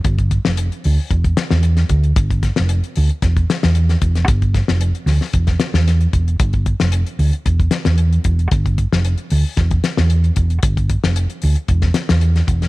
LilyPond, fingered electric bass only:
\new Staff \with { instrumentName = "Fingered electric bass" } { \clef bass \time 4/4 \key d \dorian \tempo 4 = 114 g,,8. f,,8 r16 d,16 r16 e,,8 r16 e,8. d,8 | g,,8. f,,8 r16 d,16 r16 e,,8 r16 e,8. e,,8 | g,,8. f,,8 r16 d,16 r16 e,,8 r16 e,8. e,,8 | g,,8. f,,8 r16 d,16 r16 e,,8 r16 e,8. e,,8 |
g,,8. f,,8 r16 d,16 r16 e,,8 r16 e,8. e,,8 | g,,8. f,,8 r16 d,16 r16 e,,8 r16 e,8. e,,8 | }